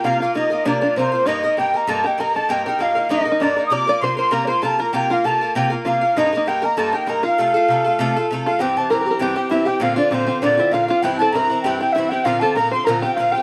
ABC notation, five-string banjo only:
X:1
M:4/4
L:1/16
Q:"Swing" 1/4=197
K:Fmix
V:1 name="Five-string banjo"
F2 F2 E4 D2 D2 C4 | E4 G4 A2 G2 B2 A2 | G2 G2 F4 (3E2 E2 E2 D3 z | d2 d2 c2 c2 B3/2 d/2 c2 A2 B2 |
G2 F2 A4 G2 z2 F4 | (3E2 E2 E2 G2 B2 A2 G2 B2 F2- | F12 z2 F2 | [K:Cmix] G4 (3B2 B2 B2 G2 G2 E2 G2 |
F2 D2 C2 C2 D2 E2 F2 F2 | G2 A2 B4 G2 G2 E2 G2 | F2 A2 B2 c2 B2 G2 F2 G2 |]